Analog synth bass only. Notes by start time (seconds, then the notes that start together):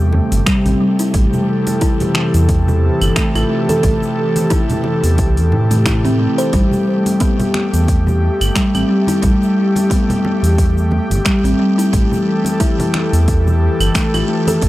Already playing: E2
0.32 G1
0.65 A1
1.14 A1
2.34 E2
3.01 G1
3.35 A1
3.84 A1
5.03 E2
5.19 C2
5.37 E2
5.52 A2
6.53 A1
7.73 E2
8.41 G1
8.74 A1
9.23 A1
10.43 E2
11.10 G1
11.44 A1
11.93 A1
13.13 E2
13.80 G1
14.14 A1
14.63 A1